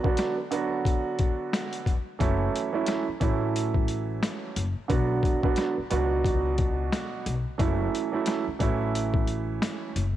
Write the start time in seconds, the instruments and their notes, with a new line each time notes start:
0.03 upright piano D3 F#3 B3 D4 F#4, kick
0.17 snare, closed hi-hat
0.51 upright piano D3 F#3 B3 D4 F#4, closed hi-hat
0.85 kick, closed hi-hat
1.19 kick, closed hi-hat
1.53 snare, closed hi-hat
1.73 closed hi-hat
1.86 kick, closed hi-hat
2.19 upright bass F#1, upright piano E3 F#3 A3 C#4 E4, kick, closed hi-hat
2.56 closed hi-hat
2.73 upright piano E3 F#3 A3 C#4 E4
2.87 snare, closed hi-hat
3.08 muted upright bass stroke
3.20 upright bass A1, upright piano E3 F#3 A3 C#4 E4, kick, closed hi-hat
3.56 closed hi-hat
3.74 kick
3.88 closed hi-hat
4.23 snare, closed hi-hat
4.56 upright bass F#1, closed hi-hat
4.88 upright bass B1, upright piano D3 F#3 B3 D4 F#4, kick, closed hi-hat
5.23 kick, closed hi-hat
5.43 upright piano D3 F#3 B3 D4 F#4, kick
5.56 snare, closed hi-hat
5.78 muted upright bass stroke
5.90 upright bass C#2, upright piano B2 F#3 B3 D4 F#4, closed hi-hat
6.24 kick, closed hi-hat
6.58 kick, closed hi-hat
6.92 snare, closed hi-hat
7.26 upright bass B1, closed hi-hat
7.58 upright bass F#1, upright piano E3 F#3 A3 C#4 E4, kick, closed hi-hat
7.95 closed hi-hat
8.12 upright piano E3 F#3 A3 C#4 E4
8.26 snare, closed hi-hat
8.48 muted upright bass stroke
8.59 upright bass A1, upright piano E3 F#3 A3 C#4 E4, kick, closed hi-hat
8.95 closed hi-hat
9.14 kick
9.28 closed hi-hat
9.62 snare, closed hi-hat
9.96 upright bass F#1, closed hi-hat